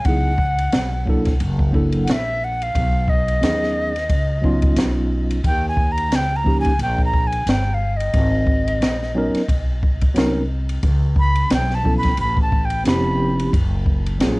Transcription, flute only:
0.06 1.06 F#5 loud
2.04 2.14 F#5 medium
2.12 2.46 E5 loud
2.44 2.64 F#5 medium
2.63 3.11 F5 loud
3.09 4.77 D#5 loud
5.46 5.66 G5 loud
5.68 5.93 G#5 loud
5.92 6.17 A#5 loud
6.15 6.38 G5 loud
6.36 6.58 A#5 loud
6.60 6.80 G#5 loud
6.83 7.02 G5 loud
7.05 7.29 A#5 loud
7.27 7.52 G#5 loud
7.50 7.76 G5 medium
7.74 7.98 F5 medium
7.97 9.63 D#5 medium
11.19 11.50 B5 loud
11.54 11.76 G5 loud
11.75 11.97 A5 medium
11.98 12.18 B5 loud
12.21 12.41 B5 loud
12.42 12.67 A5 loud
12.65 12.87 G5 medium
12.87 13.50 B5 medium

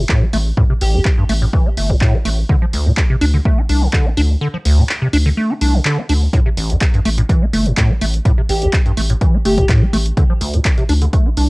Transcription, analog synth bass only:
0.33 0.52 A1 medium
0.81 1.00 A1 loud
1.29 1.48 A1 medium
1.77 1.96 G1 loud
2.25 2.44 A1 medium
2.73 2.92 D2 medium
3.21 3.40 D2 medium
3.69 3.88 C2 medium
4.17 4.36 D2 medium
4.65 4.84 D2 medium
5.13 5.32 D2 medium
5.61 5.80 C2 medium
6.09 6.28 D2 medium
6.57 6.76 A1 medium
7.05 7.24 A1 medium
7.53 7.72 G1 loud
8.01 8.20 A1 medium
8.49 8.68 A1 medium
8.97 9.16 A1 medium
9.45 9.64 G1 medium
9.93 10.12 A1 medium
10.41 10.60 D2 medium
10.89 11.08 D2 medium
11.37 11.49 C2 loud

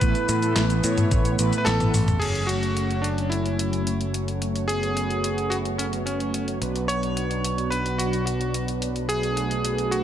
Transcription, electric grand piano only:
0.00 1.57 B4 loud
1.58 1.66 B4 medium
1.65 2.22 A4 loud
2.19 2.46 G#4 medium
2.47 3.05 F#4 medium
3.02 3.31 D4 medium
3.30 4.09 E4 medium
4.68 5.54 G#4 loud
5.50 5.56 F#4 medium
5.78 5.85 C#4 medium
6.06 6.45 C#4 medium
6.88 7.67 C#5 loud
7.70 8.00 B4 medium
7.98 8.24 F#4 medium
8.26 8.65 F#4 medium
9.09 9.94 G#4 loud
9.91 10.04 F#4 medium

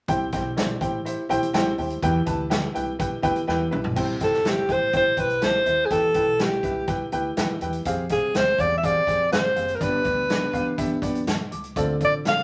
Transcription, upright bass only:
0.08 0.28 C2 medium
0.33 0.73 B1 medium
0.81 1.11 A1 medium
1.30 1.40 B1 medium
1.42 1.52 C2 medium
1.54 1.74 C2 medium
1.78 1.98 D#2 medium
2.03 2.23 E2 loud
2.27 2.67 D2 medium
2.75 3.06 C2 medium
3.23 3.34 D2 medium
3.36 3.46 E2 medium
3.48 3.68 E2 medium
3.72 3.93 B1 medium
3.97 4.17 C2 medium
4.21 4.61 G1 medium
4.69 5.10 A1 medium
5.17 5.38 B1 medium
5.42 5.63 C2 medium
5.66 5.87 D#2 medium
5.91 6.11 E2 medium
6.15 6.56 B1 medium
6.63 7.04 C2 medium
7.12 7.33 D2 medium
7.37 7.57 E2 medium
7.61 7.82 E2 medium
7.85 8.12 F2 medium
8.10 8.31 C2 medium
8.34 8.55 D2 medium
8.59 8.99 E2 medium
9.07 9.28 F2 medium
9.32 9.52 G2 medium
9.56 9.77 F#1 medium
9.81 10.01 G1 medium
10.05 10.46 D2 medium
10.53 10.94 E2 medium
11.02 11.23 F2 medium
11.27 11.47 G2 medium
11.52 11.72 C#2 medium
11.76 11.96 D2 medium

